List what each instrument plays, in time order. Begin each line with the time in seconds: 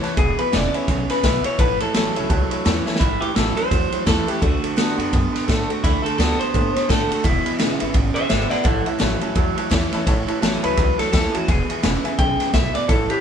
Already playing: steel-string acoustic guitar E2 E3 A3 C#4 E4
0.02 clean electric guitar A2 E3, upright piano C#5 E5 A5, muted upright bass stroke, snare, ride
0.17 upright bass E1, clean electric guitar E2 B2 G#4, steel-string acoustic guitar E2, upright piano B4 E5 G#5, kick, ride
0.37 clean electric guitar E2 B2 B4, upright piano B4 E5 G#5, muted upright bass stroke, ride
0.52 upright bass E1, clean electric guitar E2 C#3 D5, steel-string acoustic guitar D3 G#3 B3 E4, upright piano B4 E5 G#5, snare, ride
0.73 clean electric guitar E2 C#3 C#5, steel-string acoustic guitar B3 E4, upright piano B4 E5 G#5, ride
0.88 upright bass B1, clean electric guitar E2 C#3, steel-string acoustic guitar B2, upright piano B4 E5 G#5, kick, snare, ride
1.09 clean electric guitar E2 C#3 B4, upright piano B4 E5 G#5, muted upright bass stroke, snare, ride
1.23 upright bass B1, clean electric guitar E2 B2, steel-string acoustic guitar D3 G#3 B3 E4, upright piano B4 E5 G#5, kick, snare, ride
1.44 clean electric guitar E2 B2 C#5, steel-string acoustic guitar B3 E4, upright piano B4 E5 G#5, muted upright bass stroke, ride
1.58 upright bass A1, clean electric guitar A2 E3 B4, steel-string acoustic guitar A2, upright piano C#5 E5 A5, kick, ride
1.80 clean electric guitar A2 E3 A4, upright piano C#5 E5 A5, muted upright bass stroke, ride
1.94 upright bass A1, clean electric guitar A2 F#3, steel-string acoustic guitar E3 A3 C#4 E4, upright piano C#5 E5 A5, snare, ride
2.15 upright bass C#2, clean electric guitar A2 F#3, steel-string acoustic guitar C#4 E4, upright piano C#5 E5 A5, ride
2.29 upright bass C#2, steel-string acoustic guitar E2, clean electric guitar A2 F#3, upright piano C#5 E5 A5, kick, ride
2.50 clean electric guitar A2 F#3, upright piano C#5 E5 A5, muted upright bass stroke, ride
2.65 upright bass E2, clean electric guitar A2 E3, steel-string acoustic guitar E3 A3 C#4 E4, upright piano C#5 E5 A5, snare, ride
2.85 clean electric guitar A2 E3, steel-string acoustic guitar C#4 E4, upright piano C#5 E5 A5, muted upright bass stroke, snare
2.96 clean electric guitar A2 E4, snare
3.00 upright bass A1, steel-string acoustic guitar A2, clean electric guitar E3, kick, ride
3.20 clean electric guitar A2 E3 G4, muted upright bass stroke, ride
3.35 upright bass A1, clean electric guitar A2 F#3 A4, steel-string acoustic guitar E3 A3 C#4, snare, ride
3.39 steel-string acoustic guitar E4
3.56 clean electric guitar A2 F#3 C5, steel-string acoustic guitar C#4 E4, ride
3.70 upright bass E2, steel-string acoustic guitar E2, clean electric guitar A2 F#3, kick, snare, ride
3.92 clean electric guitar A2 F#3, muted upright bass stroke, ride
4.06 upright bass E2, clean electric guitar A2 E3 A4, steel-string acoustic guitar E3 A3 C#4 E4, kick, snare, ride
4.27 clean electric guitar A2 E3 G4, steel-string acoustic guitar C#4 E4, muted upright bass stroke, ride
4.41 upright bass D2, clean electric guitar D3 A3 F#4, steel-string acoustic guitar D3, kick, ride
4.62 clean electric guitar D3 A3, muted upright bass stroke, ride
4.76 upright bass D2, clean electric guitar D3 B3, steel-string acoustic guitar D3 A3 D4 F#4, snare, ride
4.97 upright bass F#2, clean electric guitar D3 B3, steel-string acoustic guitar D4 F#4, ride
5.12 upright bass F#2, steel-string acoustic guitar A2, clean electric guitar D3 B3, kick, ride
5.33 clean electric guitar D3 B3, snare, ride
5.47 upright bass A2, clean electric guitar D3 A3, steel-string acoustic guitar D3 A3 D4 F#4, kick, snare, ride
5.69 clean electric guitar D3 A3, steel-string acoustic guitar D4 F#4, muted upright bass stroke, ride
5.83 upright bass D2, clean electric guitar D3 A3 E4, steel-string acoustic guitar D3, kick, snare, ride
6.03 clean electric guitar D3 A3 A4, muted upright bass stroke, ride
6.18 upright bass D2, steel-string acoustic guitar D3 A3 D4 F#4, clean electric guitar D3 B3 A4, snare, ride
6.40 clean electric guitar D3 B3 C5, steel-string acoustic guitar D4 F#4, ride
6.54 steel-string acoustic guitar A2, upright bass A2, clean electric guitar D3 B3, kick, ride
6.75 clean electric guitar D3 B3, muted upright bass stroke, snare, ride
6.88 upright bass A2, clean electric guitar D3 A3 A4, steel-string acoustic guitar D3 A3 D4 F#4, kick, snare, ride
7.09 clean electric guitar D3 A3 A4, steel-string acoustic guitar D4 F#4, muted upright bass stroke, ride
7.24 upright bass E1, clean electric guitar E2 B2 E4, steel-string acoustic guitar E2, kick, ride
7.45 clean electric guitar E2 B2, ride
7.59 upright bass E1, clean electric guitar E2 C#3, steel-string acoustic guitar D3 G#3 B3 E4, snare, ride
7.79 upright bass G#1, clean electric guitar E2 C#3, steel-string acoustic guitar B3 E4, ride
7.94 upright bass G#1, clean electric guitar E2 C#3, steel-string acoustic guitar B2, kick, ride
8.14 clean electric guitar E2 C#3 C5 E5, muted upright bass stroke, ride
8.29 upright bass G#1, clean electric guitar E2 B2 C5 E5, steel-string acoustic guitar D3 G#3 B3 E4, snare, ride
8.50 clean electric guitar E2 B2 D5 F#5, steel-string acoustic guitar B3 E4, muted upright bass stroke, snare, ride
8.64 upright bass A1, steel-string acoustic guitar A2, clean electric guitar A2 E3 A4 F#5, upright piano C#5 E5 A5, kick, snare, ride
8.86 clean electric guitar A2 E3 E5, upright piano C#5 E5 A5, muted upright bass stroke, ride
8.99 upright bass A1, clean electric guitar A2 F#3, steel-string acoustic guitar E3 A3 C#4 E4, upright piano C#5 E5 A5, snare, ride
9.21 clean electric guitar A2 F#3, steel-string acoustic guitar C#4 E4, upright piano C#5 E5 A5, ride
9.35 steel-string acoustic guitar E2, upright bass E2, clean electric guitar A2 F#3, upright piano C#5 E5 A5, kick, ride
9.56 clean electric guitar A2 F#3, upright piano C#5 E5 A5, muted upright bass stroke, ride
9.70 upright bass E2, clean electric guitar A2 E3, steel-string acoustic guitar E3 A3 C#4 E4, upright piano C#5 E5 A5, kick, snare, ride
9.92 clean electric guitar A2 E3, steel-string acoustic guitar C#4 E4, upright piano C#5 E5 A5, muted upright bass stroke, snare, ride
10.06 upright bass A1, clean electric guitar A2 E3, steel-string acoustic guitar A2, upright piano C#5 E5 A5, kick, snare, ride
10.27 clean electric guitar A2 E3, upright piano C#5 E5 A5, muted upright bass stroke, ride
10.40 upright bass A1, clean electric guitar A2 F#3, steel-string acoustic guitar E3 A3 C#4 E4, upright piano C#5 E5 A5, snare, ride
10.62 upright bass C#2, clean electric guitar A2 F#3 B4, steel-string acoustic guitar E4, upright piano C#5 E5 A5, ride
10.67 steel-string acoustic guitar C#4
10.77 upright bass C#2, steel-string acoustic guitar E2, clean electric guitar A2 F#3, upright piano C#5 E5 A5, kick, snare, ride
10.97 clean electric guitar A2 F#3 A4, upright piano C#5 E5 A5, muted upright bass stroke, snare, ride
11.12 upright bass D#2, clean electric guitar A2 E3 A4, steel-string acoustic guitar E3 A3 C#4 E4, upright piano C#5 E5 A5, kick, snare, ride
11.33 clean electric guitar A2 E3 F#4, steel-string acoustic guitar E4, upright piano C#5 E5 A5, muted upright bass stroke, ride
11.37 steel-string acoustic guitar C#4
11.47 upright bass E1, clean electric guitar E2 B2 G#4, steel-string acoustic guitar E2, upright piano B4 E5 G#5, kick, snare, ride
11.69 clean electric guitar E2 B2, upright piano B4 E5 G#5, muted upright bass stroke, ride
11.83 upright bass E1, clean electric guitar E2 C#3, steel-string acoustic guitar D3 G#3 B3 E4, upright piano B4 E5 G#5, snare, ride
12.04 clean electric guitar E2 C#3, steel-string acoustic guitar B3 E4, upright piano B4 E5 G#5, muted upright bass stroke, ride
12.18 upright bass B1, clean electric guitar E2 C#3 G5, steel-string acoustic guitar F#2, upright piano B4 E5 G#5, kick, snare, ride
12.40 clean electric guitar E2 C#3, upright piano B4 E5 G#5, muted upright bass stroke, snare, ride
12.53 upright bass B1, clean electric guitar E2 B2 E5, steel-string acoustic guitar G#2, upright piano B4 E5 G#5, kick, snare, ride
12.74 clean electric guitar E2 B2 D5, upright piano B4 E5 G#5, muted upright bass stroke, snare, ride
12.88 upright bass A1, clean electric guitar A2 E3 A4, steel-string acoustic guitar A2, upright piano C#5 E5 A5, kick, snare, ride
13.09 clean electric guitar A2 E3 G4, upright piano C#5 E5 A5, ride